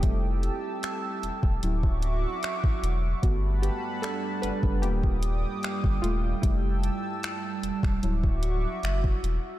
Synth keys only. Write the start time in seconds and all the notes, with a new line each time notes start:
Already playing: C4 A4
0.02 G3 A3 E4
1.63 F#3 C#4 E4
3.22 A3 B3 F#4
3.62 B3 G4
4.02 D4 A4
4.42 D4 B4
4.82 G3 A#3 D4 F4 G4
6.02 A3 F4
6.42 G3 A3 E4
8.03 F#3 C#4 E4